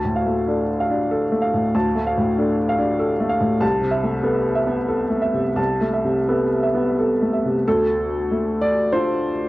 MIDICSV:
0, 0, Header, 1, 2, 480
1, 0, Start_track
1, 0, Tempo, 632911
1, 1323, Time_signature, 3, 2, 24, 8
1, 3709, Tempo, 692841
1, 5629, Tempo, 626959
1, 7026, End_track
2, 0, Start_track
2, 0, Title_t, "Upright piano"
2, 0, Program_c, 0, 0
2, 0, Control_c, 0, 64, 127
2, 0, Note_on_c, 0, 38, 47
2, 0, Note_on_c, 0, 81, 43
2, 35, Note_on_c, 0, 45, 36
2, 120, Note_on_c, 0, 77, 39
2, 198, Note_on_c, 0, 57, 36
2, 261, Note_off_c, 0, 81, 0
2, 295, Note_off_c, 0, 45, 0
2, 362, Note_on_c, 0, 62, 40
2, 366, Note_on_c, 0, 69, 40
2, 458, Note_off_c, 0, 57, 0
2, 509, Note_off_c, 0, 77, 0
2, 608, Note_on_c, 0, 77, 40
2, 620, Note_off_c, 0, 62, 0
2, 684, Note_on_c, 0, 62, 39
2, 751, Note_off_c, 0, 69, 0
2, 843, Note_on_c, 0, 69, 44
2, 940, Note_off_c, 0, 62, 0
2, 989, Note_off_c, 0, 77, 0
2, 1000, Note_on_c, 0, 57, 42
2, 1074, Note_on_c, 0, 77, 43
2, 1165, Note_on_c, 0, 45, 38
2, 1227, Note_off_c, 0, 69, 0
2, 1258, Note_off_c, 0, 57, 0
2, 1295, Note_off_c, 0, 38, 0
2, 1325, Note_on_c, 0, 81, 50
2, 1326, Note_on_c, 0, 38, 52
2, 1335, Control_c, 0, 64, 0
2, 1421, Note_off_c, 0, 45, 0
2, 1464, Note_off_c, 0, 77, 0
2, 1481, Control_c, 0, 64, 127
2, 1481, Note_on_c, 0, 57, 39
2, 1568, Note_on_c, 0, 77, 46
2, 1650, Note_on_c, 0, 45, 45
2, 1708, Note_off_c, 0, 81, 0
2, 1737, Note_off_c, 0, 57, 0
2, 1807, Note_on_c, 0, 62, 46
2, 1811, Note_on_c, 0, 69, 45
2, 1899, Note_off_c, 0, 45, 0
2, 1945, Note_off_c, 0, 77, 0
2, 2039, Note_on_c, 0, 77, 51
2, 2055, Note_off_c, 0, 62, 0
2, 2114, Note_on_c, 0, 62, 46
2, 2183, Note_off_c, 0, 69, 0
2, 2269, Note_on_c, 0, 69, 52
2, 2366, Note_off_c, 0, 62, 0
2, 2416, Note_off_c, 0, 77, 0
2, 2427, Note_on_c, 0, 57, 48
2, 2497, Note_on_c, 0, 77, 51
2, 2581, Note_on_c, 0, 45, 43
2, 2648, Note_off_c, 0, 69, 0
2, 2680, Note_off_c, 0, 57, 0
2, 2715, Note_off_c, 0, 38, 0
2, 2732, Note_on_c, 0, 36, 61
2, 2735, Note_on_c, 0, 81, 57
2, 2738, Note_off_c, 0, 77, 0
2, 2741, Note_off_c, 0, 45, 0
2, 2759, Control_c, 0, 64, 0
2, 2888, Control_c, 0, 64, 127
2, 2893, Note_on_c, 0, 48, 46
2, 2966, Note_on_c, 0, 76, 51
2, 3059, Note_on_c, 0, 57, 43
2, 3119, Note_off_c, 0, 81, 0
2, 3151, Note_off_c, 0, 48, 0
2, 3210, Note_on_c, 0, 59, 49
2, 3211, Note_on_c, 0, 69, 51
2, 3315, Note_off_c, 0, 57, 0
2, 3357, Note_off_c, 0, 76, 0
2, 3452, Note_on_c, 0, 76, 50
2, 3474, Note_off_c, 0, 59, 0
2, 3540, Note_on_c, 0, 59, 48
2, 3606, Note_off_c, 0, 69, 0
2, 3704, Note_on_c, 0, 69, 47
2, 3801, Note_off_c, 0, 59, 0
2, 3845, Note_off_c, 0, 76, 0
2, 3853, Note_on_c, 0, 57, 44
2, 3936, Note_on_c, 0, 76, 46
2, 4019, Note_on_c, 0, 48, 39
2, 4084, Note_off_c, 0, 69, 0
2, 4113, Note_off_c, 0, 57, 0
2, 4151, Note_off_c, 0, 36, 0
2, 4171, Note_on_c, 0, 36, 53
2, 4174, Note_on_c, 0, 81, 47
2, 4200, Control_c, 0, 64, 0
2, 4280, Note_off_c, 0, 48, 0
2, 4326, Note_off_c, 0, 76, 0
2, 4329, Control_c, 0, 64, 127
2, 4346, Note_on_c, 0, 57, 39
2, 4433, Note_on_c, 0, 76, 43
2, 4509, Note_on_c, 0, 48, 37
2, 4567, Note_off_c, 0, 81, 0
2, 4604, Note_off_c, 0, 57, 0
2, 4675, Note_on_c, 0, 69, 43
2, 4677, Note_on_c, 0, 59, 44
2, 4767, Note_off_c, 0, 48, 0
2, 4817, Note_off_c, 0, 76, 0
2, 4914, Note_on_c, 0, 76, 43
2, 4932, Note_off_c, 0, 59, 0
2, 4994, Note_on_c, 0, 59, 43
2, 5061, Note_off_c, 0, 69, 0
2, 5163, Note_on_c, 0, 69, 44
2, 5252, Note_off_c, 0, 59, 0
2, 5301, Note_off_c, 0, 76, 0
2, 5326, Note_on_c, 0, 57, 39
2, 5401, Note_on_c, 0, 76, 39
2, 5486, Note_on_c, 0, 48, 36
2, 5542, Note_off_c, 0, 69, 0
2, 5574, Note_off_c, 0, 57, 0
2, 5595, Note_off_c, 0, 36, 0
2, 5632, Note_off_c, 0, 76, 0
2, 5635, Note_off_c, 0, 48, 0
2, 5641, Control_c, 0, 64, 0
2, 5641, Note_on_c, 0, 69, 76
2, 5645, Note_on_c, 0, 38, 51
2, 5752, Control_c, 0, 64, 127
2, 6128, Note_on_c, 0, 57, 41
2, 6358, Note_on_c, 0, 74, 69
2, 6364, Note_off_c, 0, 69, 0
2, 6595, Note_on_c, 0, 72, 71
2, 6597, Note_off_c, 0, 74, 0
2, 6597, Note_on_c, 0, 62, 38
2, 6602, Note_on_c, 0, 65, 44
2, 6886, Note_off_c, 0, 57, 0
2, 7026, Note_off_c, 0, 38, 0
2, 7026, Note_off_c, 0, 62, 0
2, 7026, Note_off_c, 0, 65, 0
2, 7026, Note_off_c, 0, 72, 0
2, 7026, End_track
0, 0, End_of_file